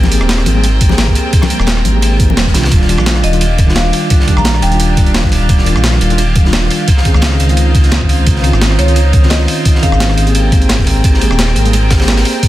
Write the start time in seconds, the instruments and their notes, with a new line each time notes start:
Already playing: detuned saw bass G#1, string section C4 A#4 G5, tine electric piano G#4
0.03 snare, high conga
0.10 tine electric piano A#3 C4 G4, closed hi-hat, ride
0.14 tine electric piano G#4
0.21 detuned saw bass D#1, cross-stick, ride
0.29 snare, closed hi-hat, ride
0.38 cross-stick
0.46 detuned saw bass G#1, closed hi-hat, ride, high conga
0.54 tine electric piano G3 A#3 C4 G#4
0.64 closed hi-hat, ride
0.81 kick, closed hi-hat, ride
0.88 tine electric piano A#3 C4 G4, snare, high conga
0.93 tine electric piano G#4
0.98 snare, closed hi-hat, ride
1.08 kick
1.15 closed hi-hat, ride
1.33 kick, closed hi-hat, ride
1.42 cross-stick, snare, high conga
1.49 tine electric piano G3 A#3 C4, closed hi-hat, ride
1.53 tine electric piano A#4
1.60 detuned saw bass D#1, cross-stick
1.67 snare, closed hi-hat, ride
1.77 cross-stick
1.85 detuned saw bass G#1, closed hi-hat, high conga
1.92 tine electric piano A#3 C4 G4
1.97 tine electric piano G#4
2.02 closed hi-hat, ride
2.20 kick, closed hi-hat
2.30 high conga
2.36 detuned saw bass D#1, tine electric piano G3 A#3 C4 C5, snare, closed hi-hat, ride
2.46 kick, snare
2.54 detuned saw bass C2, tine electric piano D#3 G3 D4 F4, snare, closed hi-hat, ride
2.63 snare, ride
2.71 detuned saw bass D#1, string section D4 G4 F5, kick, closed hi-hat, ride
2.81 snare
2.87 tine electric piano D#3 G3 D4, closed hi-hat, ride
2.91 tine electric piano F4
2.97 detuned saw bass A#1, cross-stick, ride
3.06 snare, closed hi-hat, ride
3.16 cross-stick
3.23 detuned saw bass D#1, marimba D#5, closed hi-hat, ride
3.32 tine electric piano D#3 G3 D4 F4, closed hi-hat
3.41 closed hi-hat, ride
3.58 kick, closed hi-hat, ride
3.66 tine electric piano D#3 G3 D4, snare
3.70 tine electric piano F4
3.76 marimba F5, snare, closed hi-hat, ride
3.93 open hi-hat, ride
4.10 kick, closed hi-hat, ride
4.20 snare
4.26 tine electric piano D#3 G3 D4, kick, closed hi-hat, ride
4.30 tine electric piano G4
4.37 detuned saw bass A#1, marimba A#5, cross-stick
4.45 snare, closed hi-hat, ride
4.54 cross-stick
4.62 detuned saw bass D#1, marimba G5, closed hi-hat, ride
4.70 tine electric piano D#3 G3 D4, closed hi-hat
4.74 tine electric piano F4
4.80 closed hi-hat, ride
4.97 kick, closed hi-hat, ride
5.06 closed hi-hat
5.14 snare, closed hi-hat, ride
5.24 detuned saw bass A#1, kick, snare
5.32 detuned saw bass D#1, open hi-hat, ride
5.49 detuned saw bass D#1, kick, closed hi-hat, ride
5.58 snare
5.64 tine electric piano D#3 G3 D4, closed hi-hat, ride
5.69 tine electric piano F4
5.76 detuned saw bass A#1, cross-stick, ride
5.84 snare, closed hi-hat, ride
5.93 cross-stick
6.01 detuned saw bass D#1, closed hi-hat, ride
6.10 tine electric piano D#3 G3 D4 F4, closed hi-hat
6.18 closed hi-hat, ride
6.35 kick, closed hi-hat, ride
6.43 tine electric piano D#3 G3 D4, snare
6.47 tine electric piano F4
6.53 snare, closed hi-hat, ride
6.70 open hi-hat, ride
6.88 string section D#4 C5, kick, closed hi-hat, ride
6.97 snare
7.03 tine electric piano D#3 C4 C#4, kick, closed hi-hat, ride
7.07 tine electric piano G#4
7.14 detuned saw bass C#2, cross-stick
7.22 snare, closed hi-hat, ride
7.32 cross-stick
7.40 detuned saw bass C#2, closed hi-hat, ride
7.47 tine electric piano D#3 C4 C#4, closed hi-hat
7.51 tine electric piano F4
7.57 closed hi-hat, ride
7.75 kick, closed hi-hat, ride
7.83 snare, closed hi-hat
7.91 snare, closed hi-hat, ride
8.01 detuned saw bass G#1, kick, ride
8.09 detuned saw bass C#2, open hi-hat, ride
8.26 detuned saw bass C#2, kick, closed hi-hat, ride
8.36 snare
8.42 tine electric piano D#3 C4 C#4, closed hi-hat, ride
8.46 tine electric piano F4
8.53 detuned saw bass G#1, cross-stick, ride
8.61 snare, closed hi-hat, ride
8.71 cross-stick
8.79 detuned saw bass C#2, marimba C#5, closed hi-hat, ride
8.87 tine electric piano D#3 C4 C#4 F4, closed hi-hat
8.96 closed hi-hat, ride
9.13 kick, closed hi-hat, ride
9.21 tine electric piano D#3 C4 C#4, snare
9.25 tine electric piano F4
9.30 marimba D#5, snare, closed hi-hat, ride
9.48 open hi-hat, ride
9.65 kick, closed hi-hat, ride
9.75 snare
9.81 tine electric piano D#3 C4 C#4, marimba F5, kick, closed hi-hat, ride
9.85 tine electric piano G#4
9.92 detuned saw bass G#1, cross-stick
10.00 snare, closed hi-hat, ride
10.10 cross-stick
10.17 detuned saw bass G#1, closed hi-hat, ride
10.25 tine electric piano A#3 C4 G4, closed hi-hat
10.29 tine electric piano G#4
10.35 string section C4 A#4 G5, closed hi-hat, ride
10.52 kick, closed hi-hat, ride
10.62 closed hi-hat
10.69 snare, closed hi-hat, ride
10.79 detuned saw bass D#1, kick, snare
10.87 detuned saw bass G#1, open hi-hat, ride
11.04 detuned saw bass G#1, kick, closed hi-hat, ride
11.14 snare
11.19 tine electric piano A#3 C4 G4, closed hi-hat, ride
11.23 tine electric piano G#4
11.30 detuned saw bass D#1, cross-stick, ride
11.39 snare, closed hi-hat, ride
11.48 cross-stick
11.56 detuned saw bass G#1, closed hi-hat, ride
11.64 tine electric piano G3 A#3 C4 G#4, closed hi-hat
11.73 closed hi-hat, ride
11.90 kick, snare, closed hi-hat, ride
11.98 tine electric piano A#3 C4 G4, snare, ride
12.02 tine electric piano G#4
12.08 snare, closed hi-hat, ride
12.17 snare, ride
12.25 open hi-hat, ride
12.43 kick, closed hi-hat, ride